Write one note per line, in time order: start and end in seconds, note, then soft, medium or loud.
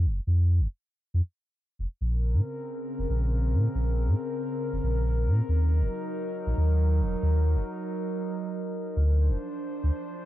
0.05 0.20 F1 medium
0.27 0.61 F2 loud
0.60 0.67 F1 loud
1.14 1.21 F2 loud
1.79 1.86 F1 loud
2.01 2.35 A#1 loud
2.01 5.45 C#3 medium
2.01 5.45 C4 medium
2.01 8.93 A#4 medium
2.34 2.41 A#2 loud
2.99 3.06 F1 loud
3.10 3.55 A#1 loud
3.53 3.68 A#2 medium
3.75 4.09 A#1 medium
4.07 4.15 A#2 loud
4.73 4.80 F1 loud
4.83 5.28 A#1 loud
5.27 5.41 A#2 medium
5.49 5.83 D#2 loud
5.49 8.93 F#3 medium
5.49 8.93 D#4 medium
5.81 5.89 D#1 loud
6.47 6.54 A#1 loud
6.57 7.02 D#2 loud
7.01 7.15 D#1 medium
7.23 7.57 D#2 loud
7.55 7.62 D#1 loud
8.96 9.31 D2 loud
8.96 10.25 F3 medium
8.96 10.25 D4 medium
8.96 10.25 C5 medium
9.29 9.36 D1 loud
9.83 9.91 D2 loud